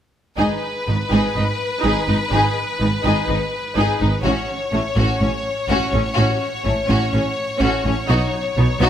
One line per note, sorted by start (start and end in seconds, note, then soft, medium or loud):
0.38 0.46 G#1 soft
0.38 0.47 G#2 soft
0.38 0.61 D#4 soft
0.38 0.62 G#4 soft
0.38 4.22 B4 soft
0.87 0.96 G#1 soft
0.87 0.96 G#2 soft
0.87 0.96 B3 soft
0.87 0.95 D#4 soft
1.11 1.20 G#1 soft
1.11 1.20 G#2 soft
1.11 1.34 D#4 soft
1.11 1.34 G#4 soft
1.35 1.44 G#1 soft
1.35 1.45 G#2 soft
1.35 1.43 D#4 soft
1.35 1.45 D#4 soft
1.84 1.92 G#1 soft
1.84 1.92 G#2 soft
1.84 2.07 D#4 soft
1.84 2.07 G#4 soft
2.08 2.16 G#1 soft
2.08 2.17 G#2 soft
2.08 2.16 D#4 soft
2.08 2.17 D#4 soft
2.32 2.40 G#1 soft
2.32 2.41 G#2 soft
2.32 2.55 D#4 soft
2.32 2.55 G#4 soft
2.80 2.89 G#1 soft
2.80 2.89 G#2 soft
2.80 2.89 B3 soft
2.80 2.88 D#4 soft
3.04 3.12 G#1 soft
3.04 3.13 G#2 soft
3.04 3.27 D#4 soft
3.04 3.27 G#4 soft
3.28 3.37 G#1 soft
3.28 3.36 G#2 soft
3.28 3.36 D#4 soft
3.28 3.37 D#4 soft
3.76 3.84 G#1 soft
3.76 3.84 G#2 soft
3.76 3.99 D#4 soft
3.76 4.00 G#4 soft
4.00 4.09 G#1 soft
4.00 4.08 G#2 soft
4.00 4.08 D#4 soft
4.00 4.09 D#4 soft
4.24 4.32 A1 soft
4.24 4.32 A2 soft
4.24 4.47 C#4 soft
4.24 4.47 F#4 soft
4.24 8.89 C#5 soft
4.73 4.81 A1 soft
4.73 4.81 A2 soft
4.73 4.81 A3 soft
4.73 4.82 C#4 soft
4.97 5.05 A1 soft
4.97 5.05 A2 medium
4.97 5.20 C#4 soft
4.97 5.20 F#4 soft
5.21 5.29 A1 soft
5.21 5.29 A2 soft
5.21 5.29 C#4 soft
5.21 5.30 C#4 soft
5.69 5.77 A1 soft
5.69 5.77 A2 medium
5.69 5.92 C#4 medium
5.69 5.92 F#4 medium
5.93 6.01 A1 soft
5.93 6.01 A2 soft
5.93 6.01 C#4 soft
5.93 6.02 C#4 soft
6.17 6.26 A1 soft
6.17 6.25 A2 medium
6.17 6.40 C#4 soft
6.17 6.39 F#4 soft
6.65 6.74 A1 soft
6.65 6.73 A2 soft
6.65 6.73 A3 soft
6.65 6.73 C#4 soft
6.88 6.98 A1 medium
6.88 6.97 A2 medium
6.88 7.11 C#4 soft
6.88 7.12 F#4 soft
7.12 7.21 A1 soft
7.12 7.21 A2 soft
7.12 7.20 C#4 soft
7.12 7.22 C#4 soft
7.60 7.69 A1 medium
7.60 7.69 A2 medium
7.60 7.83 C#4 medium
7.60 7.84 F#4 medium
7.85 7.93 A1 soft
7.85 7.93 A2 soft
7.85 7.93 C#4 soft
7.85 7.94 C#4 soft
8.09 8.17 B1 medium
8.09 8.17 B2 medium
8.09 8.32 D#4 medium
8.09 8.32 F#4 soft
8.56 8.64 B1 soft
8.56 8.65 B2 soft
8.56 8.67 B3 soft
8.56 8.65 D#4 soft
8.80 8.89 B1 medium
8.80 8.88 B2 medium
8.80 8.89 D#4 medium
8.80 8.89 F#4 medium